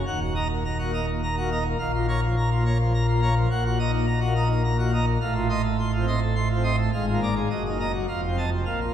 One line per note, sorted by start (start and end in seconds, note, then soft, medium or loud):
0.06 1.75 D#1 loud
0.06 1.75 D#2 loud
0.06 0.19 F#5 loud
0.20 0.33 F#4 medium
0.35 0.47 D#5 medium
0.35 0.48 A#5 loud
0.51 0.63 A#2 medium
0.65 0.77 A#5 loud
0.78 0.91 F#4 medium
0.83 1.00 A#3 medium
0.93 1.05 D#5 medium
0.93 1.06 A#5 medium
1.08 1.21 A#2 medium
1.23 1.35 A#5 loud
1.37 1.49 F#4 medium
1.42 1.58 A#3 loud
1.52 1.63 D#5 medium
1.52 1.64 A#5 medium
1.66 1.77 A#2 medium
1.79 3.46 A#1 loud
1.79 3.46 A#2 loud
1.79 1.92 F5 loud
1.94 2.06 F4 medium
2.08 2.20 C#5 medium
2.08 2.20 A#5 loud
2.23 2.35 F3 medium
2.37 2.49 A#5 medium
2.51 2.63 F4 medium
2.56 2.73 A#3 medium
2.66 2.77 C#5 medium
2.66 2.77 A#5 medium
2.80 2.93 F3 medium
2.94 3.06 A#5 medium
3.08 3.20 F4 loud
3.12 3.29 A#3 loud
3.22 3.34 C#5 medium
3.22 3.34 A#5 loud
3.37 3.48 F3 medium
3.50 5.17 A#1 loud
3.50 5.17 A#2 loud
3.50 3.63 F#5 loud
3.66 3.78 F#4 loud
3.79 3.91 D#5 medium
3.79 3.91 A#5 loud
3.88 4.05 D#4 medium
3.93 4.06 A#3 medium
4.06 4.19 A#5 loud
4.20 4.33 F#4 medium
4.26 4.43 A#3 medium
4.36 4.48 D#5 medium
4.36 4.48 A#5 loud
4.45 4.62 D#4 medium
4.50 4.63 A#3 medium
4.64 4.77 A#5 medium
4.78 4.91 F#4 loud
4.83 5.00 A#3 medium
4.93 5.05 D#5 medium
4.93 5.05 A#5 medium
5.07 5.19 A#3 medium
5.21 6.89 A1 loud
5.21 6.89 A2 loud
5.21 5.34 F5 loud
5.34 5.48 F4 medium
5.49 5.62 D#5 medium
5.49 5.62 C6 loud
5.64 5.77 A3 medium
5.79 5.92 C6 medium
5.93 6.06 F4 medium
5.99 6.15 C4 medium
6.07 6.19 D#5 medium
6.07 6.20 C6 medium
6.22 6.35 A3 medium
6.36 6.48 C6 medium
6.50 6.62 F4 medium
6.55 6.72 C4 medium
6.64 6.76 D#5 medium
6.64 6.76 C6 medium
6.78 6.91 A3 medium
6.93 7.48 G#1 loud
6.93 7.48 G#2 loud
6.93 7.05 F5 loud
7.07 7.20 F4 medium
7.13 7.29 A#3 medium
7.23 7.34 D5 medium
7.23 7.34 A#5 loud
7.37 7.48 G#3 medium
7.50 8.06 F#1 medium
7.50 8.06 F#2 medium
7.50 7.63 D#5 medium
7.65 7.78 D#4 medium
7.70 7.87 A#3 medium
7.80 7.92 D#5 medium
7.80 7.92 A#5 loud
7.93 8.06 F#3 medium
8.08 8.65 F1 medium
8.08 8.65 F2 medium
8.08 8.21 F5 medium
8.23 8.36 F4 medium
8.28 8.45 C4 medium
8.37 8.50 D#5 medium
8.37 8.50 A5 medium
8.52 8.64 C3 medium
8.65 8.94 A#1 medium
8.65 8.94 A#2 medium
8.65 8.79 F5 medium
8.81 8.94 F4 medium